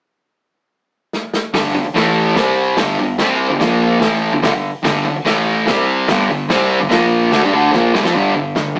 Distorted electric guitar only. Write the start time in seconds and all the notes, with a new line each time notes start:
1.54 G2 D3 G3
1.74 G2 D3
1.86 muted distorted electric guitar stroke
1.95 A2 E3 A3
2.36 C3 G3 C4
2.77 G2 D3 G3
2.98 G2 D3
3.18 C3 G3 C4
3.50 G2 D3
3.59 A#2 F3 A#3
4.00 A2 E3 A3
4.33 G2 D3
4.42 G2 D3
4.53 G2 D3
4.83 G2 D3 G3
5.05 G2 D3
5.16 muted distorted electric guitar stroke
5.25 A2 E3 A3
5.67 C3 G3 C4
6.08 G2 D3 G3
6.29 G2 D3
6.49 C3 G3 C4
6.81 G2 D3
6.89 A#2 F3 A#3
7.31 D3 A3
7.43 G3 D4
7.53 D3 A3 D4
7.72 A#2 F3 A#3
7.94 C3 G3
8.03 F3 C4
8.14 G2 D3 G3
8.35 G2 D3
8.56 G2 D3
8.76 G2 D3